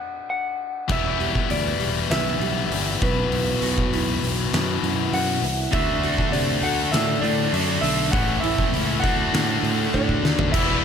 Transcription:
Already playing: F#5
0.30 F#5
0.88 E1 E2 E3 G3 B3 E5, kick, crash
0.92 E4
1.20 G4, open hi-hat
1.35 kick
1.50 D2 B3 D5, open hi-hat
1.80 E1 G3, open hi-hat
2.10 B1 E3 E5, snare, open hi-hat
2.40 B1 G3, open hi-hat
2.70 G1 G4, open hi-hat
3.00 B1 B2 E3 F#3 B3 B4, kick, open hi-hat
3.05 E4
3.30 B1 B2, open hi-hat
3.62 B1 F#4, open hi-hat
3.78 kick
3.92 B1 E4, open hi-hat
4.23 B1 B3, open hi-hat
4.53 F#2 E3, snare, open hi-hat
4.83 F#2 B3, open hi-hat
5.13 F#2 F#4 F#5, open hi-hat
5.42 C2 E4, open hi-hat
5.72 D2 D3 A3 D4 E5, kick, open hi-hat
5.76 F#4
6.03 F#4, open hi-hat
6.18 kick
6.32 C3 D4 D5, open hi-hat
6.62 D2 A3 F#5, open hi-hat
6.92 A2 D3 E5, snare, open hi-hat
7.21 A2 D3 A3 D4 D5, open hi-hat
7.52 F#2 D3 A3 D4 F#4, open hi-hat
7.81 B1 D4 E5, open hi-hat
8.12 A1 A2 E3 A3 C#4 F#5, kick, open hi-hat
8.16 E4
8.40 A1 E4 E5, open hi-hat
8.58 kick
8.73 C#2 C#4, open hi-hat
9.00 D3 A3 F#5, kick
9.04 D2 D3 D4 F#4, open hi-hat
9.33 A2 D3, snare, open hi-hat
9.63 A2 A3, open hi-hat
9.94 A2 D4 F#4 D5, kick
10.09 kick
10.23 D#2 D4, snare
10.39 floor tom
10.52 E1 E3 G3 B3 E4 E5, kick, crash
10.56 E4

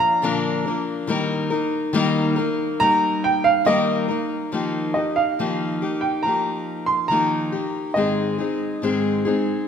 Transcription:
Already playing: F3 A#3 D4 A#4
0.00 A#5
0.22 A#2 D3 F3 A#3 D4 A#4
0.66 F3 A#3 D4 A#4
1.07 D#3 G3 A#3 D#4 A#4
1.50 A#3 D#4 A#4
1.93 D#3 G3 A#3 D#4 A#4
2.36 A#3 D#4 A#4
2.80 G3 A#3 D#4 A#4 A#5
3.24 G5
3.44 F5
3.65 D#3 G3 A#3 D#4 A#4 D#5
4.08 A#3 D#4 A#4
4.52 D#3 F3 A#3 D#4 G4
4.94 D#4 G4 D#5
4.98 A#3
5.16 F5
5.39 D#3 F3 A#3 D#4 G4
5.82 A#3 D#4 G4
6.01 G5
6.23 F3 A#3 D#4 A#5
6.28 G4
6.86 C6
7.08 D#3 F3 A#3 D#4 A#5
7.12 G4
7.52 A#3 D#4 G4
7.94 G#2 D#3 G#3 C4 D#4 D#5
7.98 G#4
8.38 G#3 C4 D#4 G#4
8.82 G#2 D#3 G#3 C4 D#4 G#4
9.25 G#3 C4 D#4 G#4

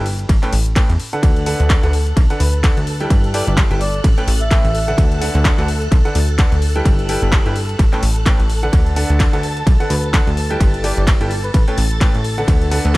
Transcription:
Already playing: G1
0.06 open hi-hat
0.19 closed hi-hat
0.29 A1, kick, closed hi-hat, ride
0.43 A2 C#4 A4 B4 G5, clap, closed hi-hat
0.53 A1, open hi-hat
0.66 closed hi-hat
0.76 A2 C#4 A4 B4 G5, kick, clap, closed hi-hat, ride
0.90 E2, closed hi-hat
1.00 open hi-hat
1.13 D3 D4 A4 B4 F#5, closed hi-hat
1.23 D2 A4 F#6, kick, closed hi-hat, ride
1.36 closed hi-hat
1.46 D3 D4 A4 B4 F#5, open hi-hat
1.60 D2, closed hi-hat
1.70 kick, clap, closed hi-hat, ride
1.83 D2 D3 D4 A4 B4 F#5, closed hi-hat
1.93 open hi-hat
2.07 closed hi-hat
2.17 B1, kick, closed hi-hat, ride
2.30 D3 D4 A4 B4 F#5, closed hi-hat
2.40 D2 B4, open hi-hat
2.64 D3 D4 A4 B4 F#5, kick, clap, closed hi-hat, ride
2.77 D2, closed hi-hat
2.87 open hi-hat
3.00 G3 E4 A4 B4 G5, closed hi-hat
3.10 G1, kick, closed hi-hat, ride
3.24 closed hi-hat
3.34 G3 E4 A4 B4 D5 G5, open hi-hat
3.47 G1 D5, closed hi-hat
3.57 kick, clap, closed hi-hat, ride
3.71 G1 G3 E4 A4 B4 G5, closed hi-hat
3.81 D5, open hi-hat
3.94 closed hi-hat
4.04 A1, kick, closed hi-hat, ride
4.18 A2 C#4 A4 B4 G5, closed hi-hat
4.28 A1, open hi-hat
4.41 E5, closed hi-hat
4.51 A2 C#4 A4 B4 G5, kick, clap, closed hi-hat, ride
4.64 A1, closed hi-hat
4.75 open hi-hat
4.88 D3 D4 A4 B4 F#5, closed hi-hat
4.98 D2, kick, closed hi-hat, ride
5.12 closed hi-hat
5.21 D3 D4 A4 B4 F#5, open hi-hat
5.35 D2, closed hi-hat
5.45 kick, clap, closed hi-hat, ride
5.58 D2 D3 D4 A4 B4 F#5, closed hi-hat
5.68 open hi-hat
5.82 closed hi-hat
5.92 B1, kick, closed hi-hat, ride
6.05 D3 D4 A4 B4 F#5, closed hi-hat
6.15 D2, open hi-hat
6.29 closed hi-hat
6.39 D3 D4 A4 B4 F#5, kick, clap, closed hi-hat, ride
6.52 D2, closed hi-hat
6.62 open hi-hat
6.76 G3 E4 A4 B4 G5, closed hi-hat
6.85 G1, kick, closed hi-hat, ride
6.99 closed hi-hat
7.09 G3 E4 A4 B4 G5, open hi-hat
7.22 G1
7.32 kick, clap, closed hi-hat, ride
7.46 G1 G3 E4 A4 B4 G5, closed hi-hat
7.56 open hi-hat
7.69 closed hi-hat
7.79 A1, kick, closed hi-hat, ride
7.93 A2 C#4 A4 B4 G5, clap, closed hi-hat
8.03 A1, open hi-hat
8.16 closed hi-hat
8.26 A2 C#4 A4 B4 G5, kick, clap, closed hi-hat, ride
8.40 A1, closed hi-hat
8.50 open hi-hat
8.63 D3 D4 A4 B4 F#5, closed hi-hat
8.73 D2 A4 A5, kick, closed hi-hat, ride
8.86 closed hi-hat
8.96 D3 D4 A4 B4 F#5, open hi-hat
9.10 D2, closed hi-hat
9.20 kick, clap, closed hi-hat, ride
9.33 D2 D3 D4 A4 B4 F#5, closed hi-hat
9.43 open hi-hat
9.57 closed hi-hat
9.67 B1, kick, closed hi-hat, ride
9.80 D3 D4 A4 B4 F#5, closed hi-hat
9.90 D2 B4, open hi-hat
10.14 D3 D4 A4 B4 F#5, kick, clap, closed hi-hat, ride
10.27 D2, closed hi-hat
10.37 open hi-hat
10.50 G3 E4 A4 B4 G5, closed hi-hat
10.60 G1, kick, closed hi-hat, ride
10.74 closed hi-hat
10.84 G3 E4 A4 B4 D5 G5, open hi-hat
10.97 G1 D5, closed hi-hat
11.07 kick, clap, closed hi-hat, ride
11.21 G1 G3 E4 A4 B4 G5, closed hi-hat
11.31 open hi-hat
11.44 B4, closed hi-hat
11.54 A1 B4, kick, closed hi-hat, ride
11.68 A2 C#4 A4 B4 G5, closed hi-hat
11.78 A1, open hi-hat
11.91 closed hi-hat
12.01 A2 C#4 A4 B4 G5, kick, clap, closed hi-hat, ride
12.15 A1, closed hi-hat
12.24 open hi-hat
12.38 D3 D4 A4 B4 F#5, closed hi-hat
12.48 D2, kick, closed hi-hat, ride
12.62 closed hi-hat
12.71 D3 D4 A4 B4 F#5, open hi-hat
12.85 D2

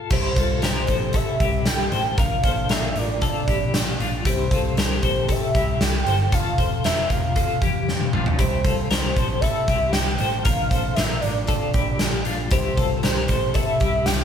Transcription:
Already playing: F4 A4
0.10 C2 C3 C4 E4 G4 C5, kick, crash
0.36 C2 F4 A4, kick, closed hi-hat
0.62 C2 G4 A#4 C5, snare, closed hi-hat
0.87 A#1 A4 C5, kick, closed hi-hat
1.13 E4 A4 E5, kick, closed hi-hat
1.40 C2 E4 G4, kick, closed hi-hat
1.66 C2 G5, snare, closed hi-hat
1.92 A1 A4 C5, closed hi-hat
2.17 A#1 F3 A#3 D4 F4 A#4 F5, kick, closed hi-hat
2.43 A#1 A4 C5, kick, closed hi-hat
2.69 A#1 F4 A#4 E5, snare, closed hi-hat
2.96 A1 D5, closed hi-hat
3.21 F4 A4, kick, closed hi-hat
3.48 A#1 E4 G4, kick, closed hi-hat
3.73 A#1, snare, closed hi-hat
4.00 A#1 D4 F4, closed hi-hat
4.25 C2 C3 C4 E4 G4, kick, closed hi-hat
4.29 C5
4.51 C2 F4 A4, kick, closed hi-hat
4.77 C2 G4 A#4 C5, snare, closed hi-hat
5.03 A#1 A4 C5, kick, closed hi-hat
5.29 E4 A4 E5, kick, closed hi-hat
5.54 C2 E4 G4, kick, closed hi-hat
5.81 C2 G5, snare, closed hi-hat
6.06 G1 A4 C5, closed hi-hat
6.32 F1 F4 A4 F5, kick, closed hi-hat
6.58 F1 A4 C5, kick, closed hi-hat
6.84 F1 F4 A#4 E5, snare, closed hi-hat
7.10 E1 F5, kick, closed hi-hat
7.36 F4 A4, kick, closed hi-hat
7.62 F1 E3 G4, kick, closed hi-hat
7.88 F1, snare
8.01 high tom
8.13 A#1 D4 F4, mid tom
8.26 floor tom
8.39 C2 C3 E4 G4 C5, kick, closed hi-hat
8.64 C2 F4 A4, kick, closed hi-hat
8.90 C2 G4 A#4 C5, snare, closed hi-hat
9.16 A#1 A4 C5, kick, closed hi-hat
9.41 E4 A4 E5, kick, closed hi-hat
9.68 C2 E4 G4, kick, closed hi-hat
9.92 C2 G5, snare, closed hi-hat
10.18 A1 A4 C5, closed hi-hat
10.43 A#1 F3 D4 F4 A#4 F5, kick, closed hi-hat
10.47 A#3
10.70 A#1 A4 C5, kick, closed hi-hat
10.95 A#1 F4 A#4 E5, snare, closed hi-hat
11.21 A1 D5, closed hi-hat
11.47 F4 A4, kick, closed hi-hat
11.74 A#1 E4 G4, kick, closed hi-hat
11.99 A#1, snare, closed hi-hat
12.25 A#1 D4 F4, closed hi-hat
12.51 C2 C3 C4 E4 G4 C5, kick, closed hi-hat
12.77 C2 F4 A4, kick, closed hi-hat
13.03 C2 G4 A#4 C5, snare, closed hi-hat
13.28 A#1 A4 C5, kick, closed hi-hat
13.54 E4 A4 E5, kick, closed hi-hat
13.80 C2 E4 G4, kick, closed hi-hat
14.06 C2 G5, snare, closed hi-hat

